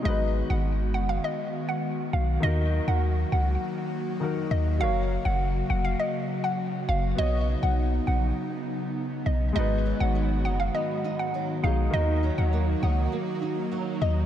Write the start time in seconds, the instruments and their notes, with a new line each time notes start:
Already playing: nylon-string guitar F#3 C#4 D#4
0.02 808-style bass G#1, analog synth pad D#3 G#3 B3 F#4, grand piano G#3 D#4, synth pluck D#5
0.06 grand piano F#4 B4
0.50 808-style bass G#1, synth pluck F#5
0.94 808-style bass F#1, synth pluck F#5
1.09 synth pluck F5
1.24 synth pluck D#5
1.69 synth pluck F#5
2.13 808-style bass B1, synth pluck F5
2.40 808-style bass D#2, grand piano D#3 D#4 F#4, analog synth pad F#3 A#3, synth pluck D#5
2.46 grand piano A#4
2.87 808-style bass D#2, synth pluck F#5
3.32 808-style bass C#2, synth pluck F#5
4.20 grand piano D#3 D#4 F#4 A#4
4.51 808-style bass D#2, synth pluck D#5
4.77 808-style bass F#1, analog synth pad C#3, grand piano F#3 F#4, synth pluck F5
4.81 grand piano A#4 C#5
5.25 808-style bass F#1, synth pluck F#5
5.70 808-style bass F1, synth pluck F#5
5.85 synth pluck F5
5.99 synth pluck D#5
6.44 synth pluck F#5
6.89 808-style bass F#1, synth pluck F5
7.15 808-style bass B1, grand piano B3 F#4, analog synth pad B3 D#4, synth pluck D#5
7.19 grand piano C#5 D#5
7.63 808-style bass B1, synth pluck F#5
8.07 808-style bass A#1, synth pluck F#5
9.26 808-style bass B1, synth pluck D#5
9.53 808-style bass G#1, nylon-string guitar G#2, analog synth pad D#3 G#3 F#4, grand piano G#3 D#4, synth pluck D#5
9.57 grand piano F#4 B4
9.86 nylon-string guitar F#3
10.00 808-style bass G#1, synth pluck F#5
10.15 nylon-string guitar B3
10.45 808-style bass F#1, nylon-string guitar D#4, synth pluck F#5
10.60 synth pluck F5
10.75 nylon-string guitar B3, synth pluck D#5
11.04 nylon-string guitar D#4
11.19 synth pluck F#5
11.34 nylon-string guitar F#3
11.62 808-style bass B1, grand piano G#3 D#4 F#4 G#4, nylon-string guitar D#4, synth pluck F5
11.90 808-style bass D#2, grand piano D#3 D#4, nylon-string guitar D#3, analog synth pad F#3 A#3 F#4, synth pluck D#5
11.94 grand piano F#4 A#4
12.23 nylon-string guitar F#3
12.38 808-style bass D#2, synth pluck F#5
12.53 nylon-string guitar A#3
12.82 808-style bass C#2, nylon-string guitar D#4, synth pluck F#5
13.12 nylon-string guitar A#3
13.42 nylon-string guitar D#4
13.72 nylon-string guitar F#3
14.01 808-style bass D#2, nylon-string guitar D#4, synth pluck D#5